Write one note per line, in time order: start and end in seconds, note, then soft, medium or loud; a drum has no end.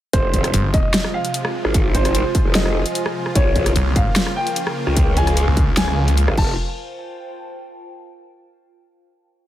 0.13 0.52 F1 loud
0.13 3.32 C3 medium
0.13 3.32 F3 medium
0.13 3.32 G#3 medium
0.13 6.34 F4 medium
0.13 4.01 F4 medium
0.13 0.66 C5 loud
0.13 kick loud
0.13 closed hi-hat medium
0.33 kick medium
0.33 closed hi-hat medium
0.44 3.36 C5 medium
0.44 cross-stick medium
0.44 closed hi-hat medium
0.54 0.72 G1 loud
0.54 closed hi-hat medium
0.74 0.83 D#1 loud
0.74 1.10 D#5 medium
0.74 kick loud
0.74 closed hi-hat medium
0.94 4.45 G#5 medium
0.94 snare loud
0.94 closed hi-hat medium
1.04 cross-stick medium
1.14 1.87 F5 medium
1.25 closed hi-hat medium
1.34 closed hi-hat medium
1.45 cross-stick medium
1.65 2.24 G#1 loud
1.65 cross-stick medium
1.74 kick loud
1.74 closed hi-hat medium
1.95 2.47 C5 medium
1.95 kick medium
1.95 closed hi-hat medium
2.05 cross-stick medium
2.05 closed hi-hat medium
2.15 closed hi-hat medium
2.35 kick loud
2.35 closed hi-hat medium
2.45 2.84 F1 loud
2.55 3.28 D#5 medium
2.55 snare loud
2.55 closed hi-hat medium
2.65 cross-stick medium
2.86 closed hi-hat medium
2.95 closed hi-hat medium
3.06 cross-stick medium
3.26 cross-stick medium
3.35 3.74 A#1 loud
3.35 6.34 C#3 medium
3.35 6.34 F3 medium
3.35 6.34 A#3 medium
3.35 6.38 A#4 medium
3.35 3.88 C#5 loud
3.35 kick loud
3.35 closed hi-hat medium
3.56 kick medium
3.56 closed hi-hat medium
3.66 cross-stick medium
3.66 closed hi-hat medium
3.76 3.94 C2 loud
3.76 closed hi-hat medium
3.96 4.05 G#1 loud
3.96 4.32 F5 medium
3.96 kick loud
3.96 closed hi-hat medium
4.02 6.38 F5 medium
4.15 6.38 C#6 medium
4.15 snare loud
4.15 closed hi-hat medium
4.27 cross-stick medium
4.36 5.09 G5 loud
4.47 closed hi-hat medium
4.56 closed hi-hat medium
4.67 cross-stick medium
4.87 5.46 C#2 loud
4.87 cross-stick medium
4.97 kick loud
4.97 closed hi-hat medium
5.17 5.69 G#5 loud
5.17 kick medium
5.17 closed hi-hat medium
5.27 cross-stick medium
5.27 closed hi-hat medium
5.37 closed hi-hat medium
5.47 6.26 C#2 loud
5.57 kick loud
5.57 closed hi-hat medium
5.77 6.37 G#5 medium
5.77 snare loud
5.77 closed hi-hat medium
5.88 cross-stick medium
6.08 closed hi-hat medium
6.17 closed hi-hat medium
6.28 6.37 G#1 loud
6.28 cross-stick medium
6.37 6.56 F1 loud
6.37 6.56 C3 medium
6.37 6.56 F3 medium
6.37 6.56 A3 medium
6.37 7.95 F4 medium
6.37 6.56 F4 medium
6.37 6.53 A5 medium
6.37 kick loud
6.37 crash medium
6.44 7.95 C5 medium